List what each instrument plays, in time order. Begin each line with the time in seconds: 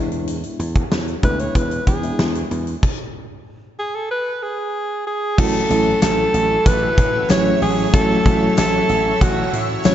Already playing: slap bass E2, fm electric piano G#3 B3 D4 E4
0.12 closed hi-hat
0.28 closed hi-hat
0.43 closed hi-hat
0.59 slap bass E2, closed hi-hat
0.75 kick, closed hi-hat
0.91 slap bass E2, snare
1.08 closed hi-hat
1.23 slap bass D2, fm electric piano G#3 B3 D4 E4, alto saxophone B4, kick, closed hi-hat
1.39 alto saxophone C#5, closed hi-hat
1.55 slap bass E2, alto saxophone B4, kick, closed hi-hat
1.71 closed hi-hat
1.87 slap bass E2, alto saxophone G#4, kick, closed hi-hat
2.03 fm electric piano G#3 B3 D4 E4, closed hi-hat
2.19 slap bass E2, snare
2.35 closed hi-hat
2.51 slap bass E2, closed hi-hat
2.67 closed hi-hat
2.83 kick, crash
3.79 alto saxophone G#4
3.95 alto saxophone A4
4.11 alto saxophone B4
4.43 alto saxophone G#4
5.07 alto saxophone G#4
5.38 slap bass A1, overdriven electric guitar A2 E3 A3, fm electric piano F#3 A3 C#4 E4 F#4, alto saxophone A4, ambient pad C#5 E5 F#5 E6, kick, crash
5.69 slap bass A1, overdriven electric guitar E3 A3, fm electric piano F#3 A3 C#4 E4 A4, closed hi-hat
6.02 slap bass A1, alto saxophone A4, snare, clap, closed hi-hat, tambourine
6.34 slap bass A1, closed hi-hat
6.64 slap bass A1, overdriven electric guitar A2, alto saxophone B4, kick, closed hi-hat
6.68 overdriven electric guitar E3 A3
6.98 slap bass A2, kick, closed hi-hat
7.29 slap bass A1, fm electric piano F#3 A3 C#4 E4 G#4, alto saxophone C#5, snare, clap, closed hi-hat, tambourine
7.62 slap bass A1, alto saxophone G#4, open hi-hat
7.93 slap bass A1, overdriven electric guitar A2 E3 A3, fm electric piano F#3 A3 C#4 E4 F#4, alto saxophone A4, kick, closed hi-hat
8.25 slap bass A1, overdriven electric guitar E3 A3, fm electric piano F#3 A3 C#4 E4 F#4, kick, closed hi-hat
8.57 slap bass A1, alto saxophone A4, snare, clap, closed hi-hat, tambourine
8.89 slap bass A1, closed hi-hat
9.19 slap bass A1, overdriven electric guitar A2, alto saxophone F#4, kick, closed hi-hat
9.23 overdriven electric guitar E3 A3
9.53 slap bass A2, closed hi-hat
9.84 slap bass A1, fm electric piano F#3 A3 C#4 E4 F#4, alto saxophone C#5, snare, clap, closed hi-hat, tambourine